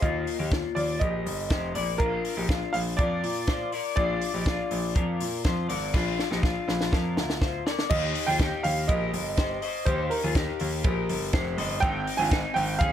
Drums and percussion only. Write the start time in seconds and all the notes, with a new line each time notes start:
0.02 kick, closed hi-hat
0.27 open hi-hat
0.52 kick, snare, closed hi-hat
0.76 open hi-hat
1.01 kick, closed hi-hat
1.26 open hi-hat
1.50 kick, snare, closed hi-hat
1.75 open hi-hat
2.00 kick, closed hi-hat
2.25 open hi-hat
2.49 kick, snare, closed hi-hat
2.74 open hi-hat
2.99 kick, closed hi-hat
3.24 open hi-hat
3.47 kick, snare, closed hi-hat
3.72 open hi-hat
3.97 kick, closed hi-hat
4.21 open hi-hat
4.46 kick, snare, closed hi-hat
4.71 open hi-hat
4.96 kick, closed hi-hat
5.20 open hi-hat
5.44 kick, snare, closed hi-hat
5.70 open hi-hat
5.94 kick, snare, crash
6.19 snare
6.32 snare
6.43 kick, snare
6.69 snare
6.81 snare
6.93 kick, snare
7.17 snare
7.30 snare
7.42 kick, snare
7.67 snare
7.79 snare
7.90 kick, crash
8.15 open hi-hat
8.39 kick, snare, ride
8.64 open hi-hat
8.89 kick, hi-hat pedal, ride
9.14 open hi-hat
9.37 kick, snare, hi-hat pedal, ride
9.62 open hi-hat
9.86 kick, hi-hat pedal, ride
10.11 open hi-hat
10.35 kick, snare, hi-hat pedal, ride
10.60 open hi-hat
10.84 kick, hi-hat pedal, ride
11.09 open hi-hat
11.33 kick, snare, hi-hat pedal, ride
11.58 open hi-hat
11.82 kick, hi-hat pedal, ride
12.07 open hi-hat
12.31 kick, snare, ride
12.56 open hi-hat
12.81 kick, hi-hat pedal, ride